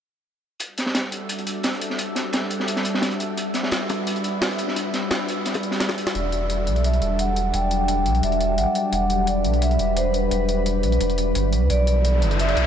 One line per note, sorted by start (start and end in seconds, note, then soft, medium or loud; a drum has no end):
0.60 6.11 G3 medium
0.60 6.11 D4 medium
0.60 5.94 F#4 medium
0.60 3.35 A4 medium
0.60 5.94 E5 medium
0.60 closed hi-hat medium
0.78 snare soft
0.78 closed hi-hat medium
0.86 snare soft
0.95 snare loud
0.95 closed hi-hat medium
1.12 closed hi-hat medium
1.29 closed hi-hat medium
1.39 closed hi-hat soft
1.47 closed hi-hat medium
1.63 snare loud
1.63 closed hi-hat medium
1.73 closed hi-hat soft
1.81 closed hi-hat medium
1.90 snare soft
1.99 closed hi-hat medium
2.15 snare soft
2.15 closed hi-hat medium
2.33 snare loud
2.33 closed hi-hat medium
2.50 closed hi-hat medium
2.60 snare soft
2.68 closed hi-hat medium
2.76 snare medium
2.76 closed hi-hat soft
2.85 closed hi-hat medium
2.94 snare medium
3.02 snare loud
3.02 closed hi-hat medium
3.11 closed hi-hat soft
3.20 closed hi-hat medium
3.37 5.95 B4 medium
3.37 closed hi-hat medium
3.54 snare soft
3.54 closed hi-hat medium
3.63 snare soft
3.71 snare loud
3.71 closed hi-hat medium
3.89 closed hi-hat medium
3.89 high bongo medium
4.07 closed hi-hat medium
4.16 closed hi-hat soft
4.24 closed hi-hat medium
4.41 snare loud
4.41 closed hi-hat medium
4.51 closed hi-hat soft
4.58 closed hi-hat medium
4.68 snare soft
4.76 closed hi-hat medium
4.94 snare soft
4.94 closed hi-hat medium
5.11 snare loud
5.11 closed hi-hat medium
5.29 closed hi-hat medium
5.46 snare soft
5.46 closed hi-hat medium
5.54 closed hi-hat medium
5.54 closed hi-hat soft
5.54 high bongo medium
5.63 closed hi-hat medium
5.71 snare soft
5.71 closed hi-hat medium
5.80 snare loud
5.80 snare medium
5.80 closed hi-hat medium
5.89 snare medium
5.89 closed hi-hat soft
5.89 high bongo medium
5.98 closed hi-hat medium
6.07 snare medium
6.15 6.68 E1 loud
6.15 11.49 F#3 medium
6.15 11.49 G3 medium
6.15 11.49 D4 medium
6.15 8.90 A4 medium
6.15 6.81 D5 medium
6.15 closed hi-hat medium
6.32 closed hi-hat medium
6.50 closed hi-hat medium
6.67 7.00 B1 loud
6.67 closed hi-hat medium
6.76 closed hi-hat soft
6.84 7.20 E5 medium
6.84 closed hi-hat medium
6.93 closed hi-hat soft
7.02 7.52 E1 loud
7.02 closed hi-hat medium
7.19 7.52 F#5 medium
7.19 closed hi-hat medium
7.36 closed hi-hat medium
7.54 8.07 E1 loud
7.54 8.19 G5 loud
7.54 closed hi-hat medium
7.71 closed hi-hat medium
7.88 closed hi-hat medium
8.06 8.21 B1 loud
8.06 closed hi-hat medium
8.15 closed hi-hat soft
8.23 8.59 E1 medium
8.23 8.59 E5 medium
8.23 closed hi-hat medium
8.32 closed hi-hat soft
8.41 closed hi-hat medium
8.58 8.66 A1 loud
8.58 8.74 F#5 medium
8.58 closed hi-hat loud
8.75 8.93 G5 loud
8.75 closed hi-hat medium
8.92 9.46 E1 loud
8.92 11.50 B4 medium
8.92 9.28 F#5 loud
8.92 closed hi-hat medium
9.10 closed hi-hat medium
9.27 9.60 D5 medium
9.27 closed hi-hat medium
9.44 9.78 B1 loud
9.44 closed hi-hat medium
9.54 closed hi-hat soft
9.62 9.98 E5 medium
9.62 closed hi-hat medium
9.71 closed hi-hat soft
9.79 10.30 E1 loud
9.79 closed hi-hat medium
9.97 10.13 C5 medium
9.97 closed hi-hat medium
10.14 11.49 B4 medium
10.14 closed hi-hat medium
10.31 10.85 E1 loud
10.31 closed hi-hat medium
10.49 closed hi-hat medium
10.66 closed hi-hat medium
10.83 10.99 B1 loud
10.83 closed hi-hat medium
10.92 closed hi-hat soft
11.01 11.34 E1 medium
11.01 closed hi-hat medium
11.10 closed hi-hat soft
11.18 closed hi-hat medium
11.35 11.54 G1 loud
11.35 closed hi-hat medium
11.53 11.63 B1 medium
11.53 12.67 E3 medium
11.53 12.67 B3 medium
11.53 12.67 D4 medium
11.53 12.67 A4 medium
11.53 closed hi-hat medium
11.62 11.69 D2 medium
11.70 12.24 B1 loud
11.70 12.41 D5 loud
11.70 closed hi-hat medium
11.70 riser medium
11.87 closed hi-hat medium
12.05 closed hi-hat medium
12.22 12.55 F#1 loud
12.22 closed hi-hat medium
12.31 closed hi-hat soft
12.39 12.67 E5 loud
12.39 closed hi-hat medium
12.49 closed hi-hat soft
12.57 12.67 B1 loud
12.57 closed hi-hat medium